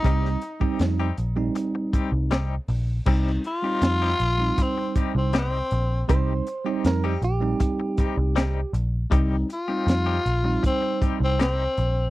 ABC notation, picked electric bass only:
X:1
M:4/4
L:1/16
Q:1/4=79
K:Cm
V:1 name="Picked electric bass" clef=bass
C,,2 z2 F,,2 B,,,2 z3 C,,3 B,,,2 | C,,2 z2 F,,2 B,,,2 z3 C,,3 B,,,2 | C,,2 z2 F,,2 B,,,2 z3 C,,3 B,,,2 | C,,2 z2 F,,2 B,,,2 z3 C,,3 B,,,2 |]